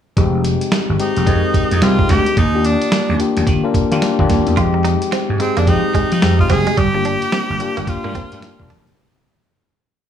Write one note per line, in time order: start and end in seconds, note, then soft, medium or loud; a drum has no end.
0.17 0.54 F1 loud
0.17 0.68 G#3 loud
0.17 0.69 C4 medium
0.17 0.69 D#4 medium
0.17 0.69 G4 loud
0.17 kick loud
0.17 closed hi-hat medium
0.44 closed hi-hat medium
0.61 closed hi-hat medium
0.72 snare loud
0.72 closed hi-hat medium
0.89 0.98 G#1 medium
0.99 1.19 G#3 medium
0.99 1.19 C4 medium
0.99 1.19 D#4 medium
0.99 1.85 D#4 medium
0.99 1.19 G4 medium
0.99 closed hi-hat medium
1.17 1.25 F1 medium
1.17 closed hi-hat soft
1.27 1.41 F2 loud
1.27 1.62 G#3 medium
1.27 1.62 C4 medium
1.27 1.63 D#4 medium
1.27 1.63 A#4 medium
1.27 kick loud
1.27 closed hi-hat medium
1.54 muted slap bass stroke soft
1.54 kick medium
1.54 closed hi-hat medium
1.71 1.80 F2 medium
1.71 closed hi-hat medium
1.82 1.96 C2 medium
1.82 2.27 G#3 medium
1.82 2.27 C4 medium
1.82 2.28 D#4 medium
1.82 2.12 F4 loud
1.82 2.28 G4 medium
1.82 snare loud
1.82 closed hi-hat medium
1.99 kick medium
2.09 2.24 D2 medium
2.09 2.38 G4 loud
2.09 kick medium
2.09 snare medium
2.09 closed hi-hat medium
2.26 closed hi-hat medium
2.37 2.75 D#2 loud
2.37 2.67 D#4 loud
2.37 kick loud
2.37 closed hi-hat medium
2.54 2.93 A#3 medium
2.54 2.93 D4 medium
2.54 2.94 F4 medium
2.54 2.94 G4 medium
2.65 3.20 D4 medium
2.65 closed hi-hat medium
2.82 closed hi-hat medium
2.92 snare loud
2.92 closed hi-hat medium
3.09 3.18 D#2 medium
3.19 3.45 A#3 medium
3.19 3.45 D4 medium
3.19 3.46 F4 medium
3.19 3.46 G4 medium
3.19 closed hi-hat medium
3.37 3.46 D#2 medium
3.37 closed hi-hat medium
3.47 3.61 D#3 loud
3.47 kick medium
3.47 closed hi-hat medium
3.64 3.78 A#3 medium
3.64 3.79 D4 medium
3.64 3.79 F4 medium
3.64 3.79 A#4 loud
3.74 muted slap bass stroke soft
3.74 kick medium
3.74 closed hi-hat medium
3.91 4.01 D#3 loud
3.91 4.06 A#3 medium
3.91 4.06 D4 medium
3.91 4.06 F4 medium
3.91 4.06 G4 loud
3.91 closed hi-hat medium
4.02 snare loud
4.02 closed hi-hat medium
4.19 4.28 D#2 medium
4.19 4.44 A#3 medium
4.19 4.44 D4 medium
4.19 4.44 F4 medium
4.19 4.44 G4 medium
4.19 kick medium
4.30 4.44 D#2 medium
4.30 kick medium
4.30 snare medium
4.30 closed hi-hat medium
4.47 4.56 E2 medium
4.47 closed hi-hat medium
4.57 4.95 F2 loud
4.57 5.09 G#3 loud
4.57 5.09 C4 loud
4.57 5.09 D#4 medium
4.57 4.68 F4 medium
4.57 5.09 G4 loud
4.57 kick loud
4.57 closed hi-hat medium
4.74 muted clean electric guitar stroke soft
4.85 4.95 D#4 medium
4.85 closed hi-hat medium
5.02 closed hi-hat medium
5.12 5.23 C4 medium
5.12 snare loud
5.12 closed hi-hat medium
5.29 5.38 G#2 medium
5.39 5.59 G#3 medium
5.39 5.59 C4 medium
5.39 5.56 C4 medium
5.39 5.59 D#4 medium
5.39 5.60 G#4 medium
5.39 muted clean electric guitar stroke soft
5.39 closed hi-hat medium
5.57 5.66 F2 medium
5.57 5.63 A#3 medium
5.57 5.70 D4 medium
5.57 closed hi-hat soft
5.67 5.81 F3 loud
5.67 6.02 G#3 medium
5.67 6.03 C4 medium
5.67 6.03 D#4 medium
5.67 6.13 D#4 loud
5.67 6.03 G4 medium
5.67 kick loud
5.67 closed hi-hat medium
5.94 6.05 G#3 medium
5.94 muted slap bass stroke soft
5.94 kick medium
5.94 closed hi-hat medium
6.12 6.21 F3 medium
6.12 6.38 D#4 medium
6.12 closed hi-hat medium
6.22 6.37 F2 loud
6.22 6.67 G#3 medium
6.22 6.68 C4 medium
6.22 6.68 D#4 medium
6.22 6.68 G4 medium
6.22 muted clean electric guitar stroke soft
6.22 snare loud
6.22 closed hi-hat medium
6.39 6.53 F4 medium
6.39 kick medium
6.50 6.64 F#1 medium
6.50 6.60 C4 medium
6.50 6.80 G#4 loud
6.50 kick medium
6.50 snare medium
6.50 closed hi-hat medium
6.67 6.74 G#3 medium
6.67 closed hi-hat soft
6.77 7.15 G1 loud
6.77 6.88 G3 medium
6.77 7.90 G4 loud
6.77 kick loud
6.77 closed hi-hat medium
6.94 7.34 A#3 medium
6.94 7.34 D4 medium
6.94 7.34 F4 medium
6.94 7.34 G4 medium
6.94 muted clean electric guitar stroke soft
7.05 7.16 D4 medium
7.05 closed hi-hat medium
7.22 closed hi-hat medium
7.32 7.43 C4 medium
7.32 snare loud
7.32 closed hi-hat medium
7.50 7.59 G1 medium
7.60 7.86 A#3 medium
7.60 7.86 D4 medium
7.60 7.86 F4 medium
7.60 7.86 G4 loud
7.60 muted clean electric guitar stroke soft
7.60 closed hi-hat medium
7.77 7.86 G1 medium
7.77 7.84 A#3 medium
7.77 closed hi-hat medium
7.87 8.71 F4 loud
7.87 muted clean electric guitar stroke soft
7.87 kick medium
7.87 closed hi-hat medium
8.04 8.14 G2 loud
8.04 8.19 A#3 medium
8.04 8.11 A#3 medium
8.04 8.19 D4 medium
8.04 8.19 F4 medium
8.04 8.19 A#4 medium
8.15 8.26 C4 medium
8.15 kick medium
8.15 closed hi-hat medium
8.32 8.41 G2 medium
8.32 8.46 A#3 medium
8.32 8.47 D4 medium
8.32 8.47 F4 medium
8.32 8.47 G4 medium
8.32 closed hi-hat medium
8.42 snare loud
8.42 closed hi-hat medium
8.59 8.69 E1 medium
8.59 8.84 A#3 medium
8.59 8.84 D4 medium
8.59 8.85 F4 medium
8.59 8.85 A#4 loud
8.59 kick medium
8.70 8.84 F1 medium
8.70 8.81 D4 medium
8.70 kick medium
8.70 snare medium
8.70 closed hi-hat medium
8.87 8.96 F#1 medium
8.87 closed hi-hat medium